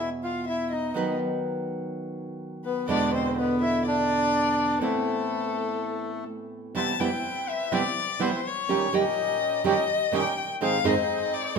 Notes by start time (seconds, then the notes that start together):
Already playing: E2 B2 E3 G#3 B3 E4
0.23 F4 F5
0.48 E4 E5
0.71 D#4 D#5
0.94 D#3 F#3 B3 D#4 B4
2.64 B3 B4
2.88 E2 B2 D3 G#3 B3 D4 E4 D5
3.13 C4 C5
3.38 B3 B4
3.61 E4 E5
3.87 D4 D5
4.80 A2 E3 A3 B3 C4 E4 A4
6.75 C3 E3 G3 B3 C4 E4 B4 A5
7.00 C3 E3 G3 B3 C4 E4 B4 G5
7.49 E5
7.71 C3 E3 G3 B3 C4 E4 B4 D5
8.19 C3 E3 G3 B3 C4 E4 B4 C5
8.47 C#5
8.68 A#2 D#3 G3 C#4 D#4 G4
8.92 A#2 D#3 G3 C#4 D#4 G4 D#5
9.64 A#2 D#3 G3 C#4 D#4 G4 D#5
10.12 A#2 D#3 G3 C#4 D#4 G4 G5
10.61 G#2 D#3 G#3 C4 D#4 G#4 F5
10.84 G#2 D#3 G#3 C4 D#4 G#4 D#5
11.33 D5
11.55 G#2 G#3